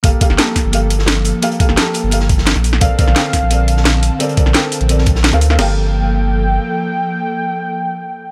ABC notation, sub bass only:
X:1
M:4/4
L:1/16
Q:1/4=173
K:Gm
V:1 name="Sub bass" clef=bass
G,,, z2 G,,, z3 G,,,8 z | z3 G,,, z3 G,,,6 B,,,3 | B,,, z2 B,,, z3 B,,,8 z | z3 B,,, z3 B,,,6 D,,3 |
G,,,12 z4 | z16 |]